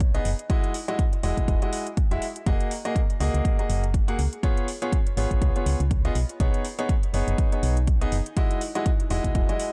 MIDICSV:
0, 0, Header, 1, 5, 480
1, 0, Start_track
1, 0, Tempo, 491803
1, 486, Time_signature, 4, 2, 24, 8
1, 9491, End_track
2, 0, Start_track
2, 0, Title_t, "Ambient pad"
2, 0, Program_c, 0, 92
2, 0, Note_on_c, 0, 63, 88
2, 0, Note_on_c, 0, 73, 82
2, 0, Note_on_c, 0, 80, 83
2, 487, Note_on_c, 0, 66, 76
2, 647, Note_on_c, 0, 75, 79
2, 1260, Note_off_c, 0, 73, 0
2, 1261, Note_off_c, 0, 63, 0
2, 2405, Note_on_c, 0, 68, 76
2, 3085, Note_off_c, 0, 66, 0
2, 3085, Note_off_c, 0, 80, 0
2, 4088, Note_on_c, 0, 65, 90
2, 4570, Note_on_c, 0, 73, 74
2, 4592, Note_on_c, 0, 83, 74
2, 4859, Note_off_c, 0, 75, 0
2, 4860, Note_off_c, 0, 68, 0
2, 6007, Note_on_c, 0, 63, 80
2, 6383, Note_on_c, 0, 80, 81
2, 6884, Note_off_c, 0, 65, 0
2, 6884, Note_off_c, 0, 83, 0
2, 8164, Note_on_c, 0, 66, 86
2, 8351, Note_on_c, 0, 75, 88
2, 8941, Note_off_c, 0, 63, 0
2, 8941, Note_off_c, 0, 73, 0
2, 9491, Note_off_c, 0, 66, 0
2, 9491, Note_off_c, 0, 75, 0
2, 9491, Note_off_c, 0, 80, 0
2, 9491, End_track
3, 0, Start_track
3, 0, Title_t, "Grand piano"
3, 0, Program_c, 1, 0
3, 141, Note_on_c, 1, 59, 85
3, 142, Note_on_c, 1, 63, 79
3, 142, Note_on_c, 1, 68, 77
3, 142, Note_on_c, 1, 75, 97
3, 267, Note_off_c, 1, 59, 0
3, 267, Note_off_c, 1, 63, 0
3, 267, Note_off_c, 1, 68, 0
3, 267, Note_off_c, 1, 75, 0
3, 484, Note_on_c, 1, 64, 81
3, 485, Note_on_c, 1, 56, 89
3, 485, Note_on_c, 1, 66, 79
3, 485, Note_on_c, 1, 75, 100
3, 710, Note_off_c, 1, 56, 0
3, 710, Note_off_c, 1, 64, 0
3, 710, Note_off_c, 1, 66, 0
3, 710, Note_off_c, 1, 75, 0
3, 861, Note_on_c, 1, 56, 84
3, 861, Note_on_c, 1, 64, 81
3, 861, Note_on_c, 1, 66, 83
3, 861, Note_on_c, 1, 75, 96
3, 987, Note_off_c, 1, 56, 0
3, 987, Note_off_c, 1, 64, 0
3, 987, Note_off_c, 1, 66, 0
3, 987, Note_off_c, 1, 75, 0
3, 1205, Note_on_c, 1, 56, 83
3, 1205, Note_on_c, 1, 64, 77
3, 1205, Note_on_c, 1, 66, 76
3, 1206, Note_on_c, 1, 75, 90
3, 1549, Note_off_c, 1, 56, 0
3, 1549, Note_off_c, 1, 64, 0
3, 1549, Note_off_c, 1, 66, 0
3, 1549, Note_off_c, 1, 75, 0
3, 1582, Note_on_c, 1, 56, 67
3, 1582, Note_on_c, 1, 66, 64
3, 1582, Note_on_c, 1, 75, 75
3, 1583, Note_on_c, 1, 64, 62
3, 1802, Note_off_c, 1, 56, 0
3, 1802, Note_off_c, 1, 64, 0
3, 1802, Note_off_c, 1, 66, 0
3, 1802, Note_off_c, 1, 75, 0
3, 2062, Note_on_c, 1, 56, 85
3, 2062, Note_on_c, 1, 64, 81
3, 2062, Note_on_c, 1, 76, 95
3, 2063, Note_on_c, 1, 66, 79
3, 2187, Note_off_c, 1, 56, 0
3, 2187, Note_off_c, 1, 64, 0
3, 2187, Note_off_c, 1, 76, 0
3, 2188, Note_off_c, 1, 66, 0
3, 2405, Note_on_c, 1, 68, 80
3, 2405, Note_on_c, 1, 75, 101
3, 2406, Note_on_c, 1, 58, 88
3, 2406, Note_on_c, 1, 66, 82
3, 2630, Note_off_c, 1, 58, 0
3, 2630, Note_off_c, 1, 66, 0
3, 2630, Note_off_c, 1, 68, 0
3, 2630, Note_off_c, 1, 75, 0
3, 2783, Note_on_c, 1, 58, 87
3, 2783, Note_on_c, 1, 66, 79
3, 2783, Note_on_c, 1, 68, 78
3, 2783, Note_on_c, 1, 75, 98
3, 2907, Note_off_c, 1, 58, 0
3, 2908, Note_off_c, 1, 66, 0
3, 2908, Note_off_c, 1, 68, 0
3, 2908, Note_off_c, 1, 75, 0
3, 3127, Note_on_c, 1, 58, 82
3, 3127, Note_on_c, 1, 66, 76
3, 3127, Note_on_c, 1, 68, 76
3, 3128, Note_on_c, 1, 75, 93
3, 3470, Note_off_c, 1, 58, 0
3, 3470, Note_off_c, 1, 66, 0
3, 3470, Note_off_c, 1, 68, 0
3, 3470, Note_off_c, 1, 75, 0
3, 3503, Note_on_c, 1, 58, 71
3, 3503, Note_on_c, 1, 68, 66
3, 3504, Note_on_c, 1, 66, 65
3, 3504, Note_on_c, 1, 75, 74
3, 3722, Note_off_c, 1, 68, 0
3, 3723, Note_off_c, 1, 58, 0
3, 3723, Note_off_c, 1, 66, 0
3, 3723, Note_off_c, 1, 75, 0
3, 3982, Note_on_c, 1, 68, 79
3, 3983, Note_on_c, 1, 58, 87
3, 3983, Note_on_c, 1, 66, 80
3, 3983, Note_on_c, 1, 78, 98
3, 4074, Note_off_c, 1, 58, 0
3, 4074, Note_off_c, 1, 66, 0
3, 4074, Note_off_c, 1, 68, 0
3, 4074, Note_off_c, 1, 78, 0
3, 4326, Note_on_c, 1, 65, 81
3, 4327, Note_on_c, 1, 59, 88
3, 4327, Note_on_c, 1, 68, 81
3, 4327, Note_on_c, 1, 73, 102
3, 4551, Note_off_c, 1, 59, 0
3, 4551, Note_off_c, 1, 65, 0
3, 4551, Note_off_c, 1, 68, 0
3, 4551, Note_off_c, 1, 73, 0
3, 4704, Note_on_c, 1, 59, 89
3, 4704, Note_on_c, 1, 65, 80
3, 4704, Note_on_c, 1, 68, 82
3, 4704, Note_on_c, 1, 73, 98
3, 4828, Note_off_c, 1, 59, 0
3, 4828, Note_off_c, 1, 65, 0
3, 4828, Note_off_c, 1, 68, 0
3, 4828, Note_off_c, 1, 73, 0
3, 5048, Note_on_c, 1, 59, 83
3, 5048, Note_on_c, 1, 65, 77
3, 5048, Note_on_c, 1, 68, 79
3, 5048, Note_on_c, 1, 73, 94
3, 5391, Note_off_c, 1, 59, 0
3, 5391, Note_off_c, 1, 65, 0
3, 5391, Note_off_c, 1, 68, 0
3, 5391, Note_off_c, 1, 73, 0
3, 5424, Note_on_c, 1, 59, 70
3, 5424, Note_on_c, 1, 65, 62
3, 5424, Note_on_c, 1, 68, 64
3, 5424, Note_on_c, 1, 73, 75
3, 5643, Note_off_c, 1, 59, 0
3, 5643, Note_off_c, 1, 65, 0
3, 5643, Note_off_c, 1, 68, 0
3, 5643, Note_off_c, 1, 73, 0
3, 5903, Note_on_c, 1, 59, 87
3, 5903, Note_on_c, 1, 65, 83
3, 5903, Note_on_c, 1, 68, 80
3, 5903, Note_on_c, 1, 75, 97
3, 5994, Note_off_c, 1, 59, 0
3, 5994, Note_off_c, 1, 65, 0
3, 5994, Note_off_c, 1, 68, 0
3, 5994, Note_off_c, 1, 75, 0
3, 6247, Note_on_c, 1, 63, 84
3, 6247, Note_on_c, 1, 68, 84
3, 6247, Note_on_c, 1, 73, 101
3, 6248, Note_on_c, 1, 59, 92
3, 6471, Note_off_c, 1, 59, 0
3, 6471, Note_off_c, 1, 63, 0
3, 6471, Note_off_c, 1, 68, 0
3, 6471, Note_off_c, 1, 73, 0
3, 6624, Note_on_c, 1, 59, 92
3, 6624, Note_on_c, 1, 63, 83
3, 6624, Note_on_c, 1, 68, 81
3, 6624, Note_on_c, 1, 73, 99
3, 6748, Note_off_c, 1, 59, 0
3, 6748, Note_off_c, 1, 63, 0
3, 6748, Note_off_c, 1, 68, 0
3, 6748, Note_off_c, 1, 73, 0
3, 6966, Note_on_c, 1, 63, 76
3, 6966, Note_on_c, 1, 73, 91
3, 6967, Note_on_c, 1, 59, 84
3, 6967, Note_on_c, 1, 68, 76
3, 7310, Note_off_c, 1, 59, 0
3, 7310, Note_off_c, 1, 63, 0
3, 7310, Note_off_c, 1, 68, 0
3, 7310, Note_off_c, 1, 73, 0
3, 7343, Note_on_c, 1, 59, 71
3, 7343, Note_on_c, 1, 63, 66
3, 7343, Note_on_c, 1, 68, 67
3, 7343, Note_on_c, 1, 73, 79
3, 7562, Note_off_c, 1, 59, 0
3, 7562, Note_off_c, 1, 63, 0
3, 7562, Note_off_c, 1, 68, 0
3, 7562, Note_off_c, 1, 73, 0
3, 7822, Note_on_c, 1, 59, 87
3, 7822, Note_on_c, 1, 63, 81
3, 7822, Note_on_c, 1, 68, 82
3, 7822, Note_on_c, 1, 75, 97
3, 7947, Note_off_c, 1, 59, 0
3, 7947, Note_off_c, 1, 63, 0
3, 7947, Note_off_c, 1, 68, 0
3, 7947, Note_off_c, 1, 75, 0
3, 8166, Note_on_c, 1, 56, 90
3, 8166, Note_on_c, 1, 64, 84
3, 8166, Note_on_c, 1, 66, 86
3, 8166, Note_on_c, 1, 75, 101
3, 8391, Note_off_c, 1, 56, 0
3, 8391, Note_off_c, 1, 64, 0
3, 8391, Note_off_c, 1, 66, 0
3, 8391, Note_off_c, 1, 75, 0
3, 8543, Note_on_c, 1, 56, 90
3, 8543, Note_on_c, 1, 64, 79
3, 8543, Note_on_c, 1, 66, 83
3, 8543, Note_on_c, 1, 75, 94
3, 8668, Note_off_c, 1, 56, 0
3, 8668, Note_off_c, 1, 64, 0
3, 8668, Note_off_c, 1, 66, 0
3, 8668, Note_off_c, 1, 75, 0
3, 8887, Note_on_c, 1, 56, 86
3, 8887, Note_on_c, 1, 64, 74
3, 8887, Note_on_c, 1, 66, 77
3, 8887, Note_on_c, 1, 75, 92
3, 9230, Note_off_c, 1, 56, 0
3, 9230, Note_off_c, 1, 64, 0
3, 9230, Note_off_c, 1, 66, 0
3, 9230, Note_off_c, 1, 75, 0
3, 9262, Note_on_c, 1, 56, 70
3, 9263, Note_on_c, 1, 64, 62
3, 9263, Note_on_c, 1, 66, 62
3, 9263, Note_on_c, 1, 75, 79
3, 9482, Note_off_c, 1, 56, 0
3, 9482, Note_off_c, 1, 64, 0
3, 9482, Note_off_c, 1, 66, 0
3, 9482, Note_off_c, 1, 75, 0
3, 9491, End_track
4, 0, Start_track
4, 0, Title_t, "FM bass"
4, 0, Program_c, 2, 39
4, 0, Note_on_c, 2, 35, 94
4, 189, Note_off_c, 2, 35, 0
4, 244, Note_on_c, 2, 30, 83
4, 335, Note_off_c, 2, 30, 0
4, 1204, Note_on_c, 2, 28, 84
4, 1295, Note_off_c, 2, 28, 0
4, 1341, Note_on_c, 2, 35, 78
4, 1410, Note_off_c, 2, 35, 0
4, 1444, Note_on_c, 2, 28, 76
4, 1535, Note_off_c, 2, 28, 0
4, 2060, Note_on_c, 2, 28, 76
4, 2130, Note_off_c, 2, 28, 0
4, 2405, Note_on_c, 2, 30, 94
4, 2496, Note_off_c, 2, 30, 0
4, 3126, Note_on_c, 2, 37, 83
4, 3216, Note_off_c, 2, 37, 0
4, 3261, Note_on_c, 2, 37, 75
4, 3330, Note_off_c, 2, 37, 0
4, 3605, Note_on_c, 2, 30, 95
4, 4029, Note_off_c, 2, 30, 0
4, 4085, Note_on_c, 2, 37, 83
4, 4176, Note_off_c, 2, 37, 0
4, 5045, Note_on_c, 2, 32, 81
4, 5136, Note_off_c, 2, 32, 0
4, 5182, Note_on_c, 2, 32, 78
4, 5251, Note_off_c, 2, 32, 0
4, 5286, Note_on_c, 2, 37, 76
4, 5376, Note_off_c, 2, 37, 0
4, 5526, Note_on_c, 2, 37, 83
4, 5616, Note_off_c, 2, 37, 0
4, 5661, Note_on_c, 2, 37, 93
4, 5949, Note_off_c, 2, 37, 0
4, 6004, Note_on_c, 2, 35, 83
4, 6095, Note_off_c, 2, 35, 0
4, 6246, Note_on_c, 2, 35, 98
4, 6336, Note_off_c, 2, 35, 0
4, 6963, Note_on_c, 2, 30, 82
4, 7055, Note_off_c, 2, 30, 0
4, 7101, Note_on_c, 2, 30, 78
4, 7170, Note_off_c, 2, 30, 0
4, 7444, Note_on_c, 2, 35, 94
4, 7869, Note_off_c, 2, 35, 0
4, 7924, Note_on_c, 2, 30, 82
4, 8015, Note_off_c, 2, 30, 0
4, 8885, Note_on_c, 2, 28, 82
4, 8976, Note_off_c, 2, 28, 0
4, 9022, Note_on_c, 2, 35, 78
4, 9090, Note_off_c, 2, 35, 0
4, 9126, Note_on_c, 2, 28, 74
4, 9216, Note_off_c, 2, 28, 0
4, 9491, End_track
5, 0, Start_track
5, 0, Title_t, "Drums"
5, 4, Note_on_c, 9, 42, 61
5, 5, Note_on_c, 9, 36, 114
5, 102, Note_off_c, 9, 36, 0
5, 102, Note_off_c, 9, 42, 0
5, 142, Note_on_c, 9, 42, 36
5, 240, Note_off_c, 9, 42, 0
5, 245, Note_on_c, 9, 46, 89
5, 342, Note_off_c, 9, 46, 0
5, 382, Note_on_c, 9, 42, 36
5, 480, Note_off_c, 9, 42, 0
5, 485, Note_on_c, 9, 36, 116
5, 485, Note_on_c, 9, 42, 59
5, 582, Note_off_c, 9, 36, 0
5, 583, Note_off_c, 9, 42, 0
5, 622, Note_on_c, 9, 42, 35
5, 719, Note_off_c, 9, 42, 0
5, 725, Note_on_c, 9, 46, 103
5, 823, Note_off_c, 9, 46, 0
5, 862, Note_on_c, 9, 42, 34
5, 959, Note_off_c, 9, 42, 0
5, 965, Note_on_c, 9, 36, 117
5, 965, Note_on_c, 9, 42, 61
5, 1062, Note_off_c, 9, 36, 0
5, 1063, Note_off_c, 9, 42, 0
5, 1101, Note_on_c, 9, 42, 34
5, 1199, Note_off_c, 9, 42, 0
5, 1204, Note_on_c, 9, 46, 86
5, 1301, Note_off_c, 9, 46, 0
5, 1341, Note_on_c, 9, 36, 58
5, 1342, Note_on_c, 9, 42, 35
5, 1439, Note_off_c, 9, 36, 0
5, 1439, Note_off_c, 9, 42, 0
5, 1445, Note_on_c, 9, 36, 110
5, 1445, Note_on_c, 9, 42, 58
5, 1542, Note_off_c, 9, 36, 0
5, 1542, Note_off_c, 9, 42, 0
5, 1581, Note_on_c, 9, 42, 36
5, 1679, Note_off_c, 9, 42, 0
5, 1685, Note_on_c, 9, 46, 102
5, 1783, Note_off_c, 9, 46, 0
5, 1822, Note_on_c, 9, 42, 35
5, 1920, Note_off_c, 9, 42, 0
5, 1925, Note_on_c, 9, 36, 110
5, 1925, Note_on_c, 9, 42, 57
5, 2023, Note_off_c, 9, 36, 0
5, 2023, Note_off_c, 9, 42, 0
5, 2063, Note_on_c, 9, 42, 37
5, 2160, Note_off_c, 9, 42, 0
5, 2165, Note_on_c, 9, 46, 87
5, 2263, Note_off_c, 9, 46, 0
5, 2302, Note_on_c, 9, 42, 35
5, 2400, Note_off_c, 9, 42, 0
5, 2405, Note_on_c, 9, 36, 107
5, 2406, Note_on_c, 9, 42, 61
5, 2503, Note_off_c, 9, 36, 0
5, 2503, Note_off_c, 9, 42, 0
5, 2542, Note_on_c, 9, 42, 36
5, 2640, Note_off_c, 9, 42, 0
5, 2646, Note_on_c, 9, 46, 95
5, 2744, Note_off_c, 9, 46, 0
5, 2783, Note_on_c, 9, 42, 34
5, 2880, Note_off_c, 9, 42, 0
5, 2886, Note_on_c, 9, 36, 112
5, 2887, Note_on_c, 9, 42, 60
5, 2983, Note_off_c, 9, 36, 0
5, 2985, Note_off_c, 9, 42, 0
5, 3024, Note_on_c, 9, 42, 34
5, 3122, Note_off_c, 9, 42, 0
5, 3128, Note_on_c, 9, 46, 82
5, 3225, Note_off_c, 9, 46, 0
5, 3264, Note_on_c, 9, 42, 35
5, 3362, Note_off_c, 9, 42, 0
5, 3366, Note_on_c, 9, 36, 111
5, 3368, Note_on_c, 9, 42, 57
5, 3464, Note_off_c, 9, 36, 0
5, 3465, Note_off_c, 9, 42, 0
5, 3505, Note_on_c, 9, 42, 35
5, 3602, Note_off_c, 9, 42, 0
5, 3607, Note_on_c, 9, 46, 96
5, 3705, Note_off_c, 9, 46, 0
5, 3744, Note_on_c, 9, 42, 35
5, 3842, Note_off_c, 9, 42, 0
5, 3846, Note_on_c, 9, 36, 108
5, 3847, Note_on_c, 9, 42, 59
5, 3944, Note_off_c, 9, 36, 0
5, 3945, Note_off_c, 9, 42, 0
5, 3985, Note_on_c, 9, 42, 37
5, 4082, Note_off_c, 9, 42, 0
5, 4087, Note_on_c, 9, 46, 87
5, 4185, Note_off_c, 9, 46, 0
5, 4224, Note_on_c, 9, 42, 35
5, 4321, Note_off_c, 9, 42, 0
5, 4326, Note_on_c, 9, 36, 104
5, 4328, Note_on_c, 9, 42, 62
5, 4424, Note_off_c, 9, 36, 0
5, 4425, Note_off_c, 9, 42, 0
5, 4464, Note_on_c, 9, 42, 36
5, 4562, Note_off_c, 9, 42, 0
5, 4568, Note_on_c, 9, 46, 96
5, 4666, Note_off_c, 9, 46, 0
5, 4704, Note_on_c, 9, 42, 37
5, 4802, Note_off_c, 9, 42, 0
5, 4806, Note_on_c, 9, 36, 109
5, 4808, Note_on_c, 9, 42, 66
5, 4904, Note_off_c, 9, 36, 0
5, 4906, Note_off_c, 9, 42, 0
5, 4944, Note_on_c, 9, 42, 36
5, 5042, Note_off_c, 9, 42, 0
5, 5048, Note_on_c, 9, 46, 84
5, 5146, Note_off_c, 9, 46, 0
5, 5183, Note_on_c, 9, 36, 53
5, 5184, Note_on_c, 9, 42, 38
5, 5280, Note_off_c, 9, 36, 0
5, 5282, Note_off_c, 9, 42, 0
5, 5286, Note_on_c, 9, 36, 106
5, 5287, Note_on_c, 9, 42, 58
5, 5384, Note_off_c, 9, 36, 0
5, 5384, Note_off_c, 9, 42, 0
5, 5424, Note_on_c, 9, 42, 37
5, 5521, Note_off_c, 9, 42, 0
5, 5527, Note_on_c, 9, 46, 93
5, 5625, Note_off_c, 9, 46, 0
5, 5663, Note_on_c, 9, 42, 37
5, 5760, Note_off_c, 9, 42, 0
5, 5766, Note_on_c, 9, 36, 105
5, 5767, Note_on_c, 9, 42, 61
5, 5864, Note_off_c, 9, 36, 0
5, 5864, Note_off_c, 9, 42, 0
5, 5903, Note_on_c, 9, 42, 38
5, 6001, Note_off_c, 9, 42, 0
5, 6006, Note_on_c, 9, 46, 87
5, 6103, Note_off_c, 9, 46, 0
5, 6142, Note_on_c, 9, 42, 38
5, 6240, Note_off_c, 9, 42, 0
5, 6246, Note_on_c, 9, 36, 110
5, 6246, Note_on_c, 9, 42, 63
5, 6344, Note_off_c, 9, 36, 0
5, 6344, Note_off_c, 9, 42, 0
5, 6383, Note_on_c, 9, 42, 40
5, 6481, Note_off_c, 9, 42, 0
5, 6486, Note_on_c, 9, 46, 92
5, 6584, Note_off_c, 9, 46, 0
5, 6623, Note_on_c, 9, 42, 38
5, 6721, Note_off_c, 9, 42, 0
5, 6726, Note_on_c, 9, 36, 105
5, 6727, Note_on_c, 9, 42, 66
5, 6824, Note_off_c, 9, 36, 0
5, 6824, Note_off_c, 9, 42, 0
5, 6863, Note_on_c, 9, 42, 39
5, 6961, Note_off_c, 9, 42, 0
5, 6966, Note_on_c, 9, 46, 82
5, 7064, Note_off_c, 9, 46, 0
5, 7103, Note_on_c, 9, 42, 39
5, 7200, Note_off_c, 9, 42, 0
5, 7206, Note_on_c, 9, 36, 111
5, 7206, Note_on_c, 9, 42, 60
5, 7304, Note_off_c, 9, 36, 0
5, 7304, Note_off_c, 9, 42, 0
5, 7343, Note_on_c, 9, 42, 38
5, 7440, Note_off_c, 9, 42, 0
5, 7446, Note_on_c, 9, 46, 91
5, 7544, Note_off_c, 9, 46, 0
5, 7583, Note_on_c, 9, 42, 38
5, 7681, Note_off_c, 9, 42, 0
5, 7686, Note_on_c, 9, 36, 102
5, 7686, Note_on_c, 9, 42, 63
5, 7783, Note_off_c, 9, 36, 0
5, 7784, Note_off_c, 9, 42, 0
5, 7823, Note_on_c, 9, 42, 39
5, 7921, Note_off_c, 9, 42, 0
5, 7925, Note_on_c, 9, 46, 84
5, 8023, Note_off_c, 9, 46, 0
5, 8063, Note_on_c, 9, 42, 37
5, 8160, Note_off_c, 9, 42, 0
5, 8165, Note_on_c, 9, 42, 63
5, 8166, Note_on_c, 9, 36, 109
5, 8263, Note_off_c, 9, 36, 0
5, 8263, Note_off_c, 9, 42, 0
5, 8302, Note_on_c, 9, 42, 39
5, 8400, Note_off_c, 9, 42, 0
5, 8406, Note_on_c, 9, 46, 96
5, 8503, Note_off_c, 9, 46, 0
5, 8543, Note_on_c, 9, 42, 38
5, 8640, Note_off_c, 9, 42, 0
5, 8646, Note_on_c, 9, 36, 110
5, 8646, Note_on_c, 9, 42, 67
5, 8743, Note_off_c, 9, 36, 0
5, 8743, Note_off_c, 9, 42, 0
5, 8782, Note_on_c, 9, 42, 39
5, 8880, Note_off_c, 9, 42, 0
5, 8885, Note_on_c, 9, 46, 82
5, 8983, Note_off_c, 9, 46, 0
5, 9022, Note_on_c, 9, 36, 54
5, 9022, Note_on_c, 9, 42, 41
5, 9120, Note_off_c, 9, 36, 0
5, 9120, Note_off_c, 9, 42, 0
5, 9125, Note_on_c, 9, 42, 62
5, 9126, Note_on_c, 9, 36, 107
5, 9223, Note_off_c, 9, 36, 0
5, 9223, Note_off_c, 9, 42, 0
5, 9263, Note_on_c, 9, 42, 38
5, 9360, Note_off_c, 9, 42, 0
5, 9365, Note_on_c, 9, 46, 94
5, 9463, Note_off_c, 9, 46, 0
5, 9491, End_track
0, 0, End_of_file